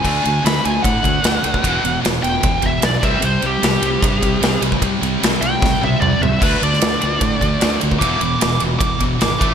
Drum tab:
CC |x---------------|----------------|----------------|----------------|
RD |--x-x-x-x-x-x-x-|x-x-x-x-x-x-x-x-|x-x-x-x-x-x-x-x-|x-x-x-x---------|
SD |----o-------o---|----o-------o---|----o-------o---|----o---o-------|
T1 |----------------|----------------|----------------|----------o-----|
T2 |----------------|----------------|----------------|------------o---|
FT |----------------|----------------|----------------|--------------o-|
BD |o-------o-o----o|o-------o-o---o-|--------o-o----o|o-------o-------|

CC |x---------------|----------------|
RD |--x-x-x-x-x-x-x-|x-x-x-x-x-x-x-x-|
SD |---oo-------o---|----o-------o---|
T1 |----------------|----------------|
T2 |----------------|----------------|
FT |----------------|----------------|
BD |o-------o-o----o|o-------o-o---o-|